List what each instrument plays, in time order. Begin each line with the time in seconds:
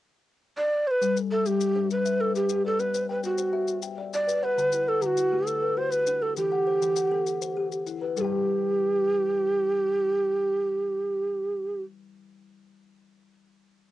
0.57 native american-style wooden flute D5
0.87 native american-style wooden flute B4 C5
1.01 kalimba G3, maracas
1.16 kalimba A4, maracas
1.31 native american-style wooden flute A4, kalimba E5
1.46 kalimba G3, native american-style wooden flute G4, maracas
1.61 maracas
1.75 kalimba D4 C5
1.91 native american-style wooden flute B4, maracas
2.05 kalimba E5, maracas
2.20 native american-style wooden flute A4, kalimba B4
2.35 native american-style wooden flute G4, maracas
2.49 kalimba G4, maracas
2.65 native american-style wooden flute A4, kalimba D5
2.79 kalimba B3, native american-style wooden flute B4, maracas
2.94 kalimba C5, maracas
3.09 native american-style wooden flute B4, kalimba G5
3.24 kalimba B3, native american-style wooden flute F#4, maracas
3.38 kalimba C5, maracas
3.53 kalimba F#4 E5
3.68 maracas
3.82 kalimba G5, maracas
3.98 kalimba D5
4.13 native american-style wooden flute D5, maracas
4.27 kalimba B4, maracas
4.43 native american-style wooden flute B4, kalimba F#5
4.58 kalimba D3, maracas
4.72 kalimba E4, maracas
4.87 native american-style wooden flute A4, kalimba B4
5.02 kalimba D3, native american-style wooden flute G4, maracas
5.06 native american-style wooden flute F#4
5.17 kalimba E4, maracas
5.32 kalimba A3 G4
5.47 native american-style wooden flute A4, maracas
5.62 kalimba B4
5.77 kalimba F#4, native american-style wooden flute C5
5.91 native american-style wooden flute B4, maracas
6.07 kalimba D4, maracas
6.22 kalimba A4, native american-style wooden flute A4
6.37 kalimba E3, native american-style wooden flute G4, maracas
6.52 kalimba F#5
6.67 kalimba C5
6.82 kalimba E3, maracas
6.96 kalimba F#5, maracas
7.12 kalimba B3 A4
7.27 maracas
7.42 kalimba C5, maracas
7.57 kalimba G4
7.72 maracas
7.87 kalimba E4, maracas
8.02 kalimba B4
8.16 kalimba G3, native american-style wooden flute A4, maracas
8.21 kalimba G4 G5, native american-style wooden flute G4